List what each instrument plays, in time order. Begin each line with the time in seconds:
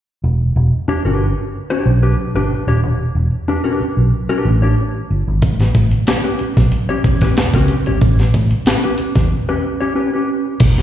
0.24 fingered electric bass E1
0.56 fingered electric bass E1
0.88 clean electric guitar D4 G4 C#5, muted fingered electric bass stroke
1.05 fingered electric bass G1, clean electric guitar D4 G4 B4
1.70 clean electric guitar D4 G4 C#5
1.86 fingered electric bass B1
2.03 clean electric guitar D4 G4 B4
2.18 muted fingered electric bass stroke
2.35 fingered electric bass G1, clean electric guitar D4 G4 B4
2.67 fingered electric bass D#1, clean electric guitar D4 G4 C#5
2.83 fingered electric bass E1
3.15 fingered electric bass E1
3.48 clean electric guitar D4 G4 B4
3.64 clean electric guitar D4 G4 B4
3.80 muted fingered electric bass stroke
3.97 fingered electric bass B1
4.29 clean electric guitar D4 G4 B4
4.45 fingered electric bass A1
4.62 clean electric guitar D4 G4 C#5
5.10 fingered electric bass G1
5.28 fingered electric bass G#1
5.42 fingered electric bass A1, kick, closed hi-hat
5.60 snare, closed hi-hat
5.75 fingered electric bass A1, kick, closed hi-hat
5.91 closed hi-hat
6.07 clean electric guitar C#4 G4 C#5, snare, closed hi-hat
6.24 clean electric guitar C#4 G4 B4
6.39 muted fingered electric bass stroke, closed hi-hat
6.57 fingered electric bass B1, kick, snare, closed hi-hat
6.72 closed hi-hat
6.89 clean electric guitar C#4 G4 C#5
7.04 fingered electric bass E2, kick, closed hi-hat
7.21 clean electric guitar C#4 G4 B4, kick, snare, closed hi-hat
7.37 muted fingered electric bass stroke, snare, closed hi-hat
7.53 fingered electric bass C#2, clean electric guitar C#4 G4 B4, kick, snare, closed hi-hat
7.68 closed hi-hat
7.86 fingered electric bass G#1, clean electric guitar C#4 G4 C#5, closed hi-hat
8.01 fingered electric bass A1, kick, closed hi-hat
8.19 snare, closed hi-hat
8.34 fingered electric bass A1, kick, closed hi-hat
8.51 closed hi-hat
8.66 clean electric guitar C#4 G4 B4, snare, closed hi-hat
8.83 clean electric guitar C#4 G4 B4, closed hi-hat
8.98 muted fingered electric bass stroke, closed hi-hat
9.15 fingered electric bass E2, kick, snare, closed hi-hat
9.49 clean electric guitar C#4 G4 B4
9.80 clean electric guitar C#4 G4 C#5
9.95 clean electric guitar C#4 G4 B4
10.13 clean electric guitar C#4 G4 B4
10.60 fingered electric bass E1, kick, closed hi-hat, crash
10.78 snare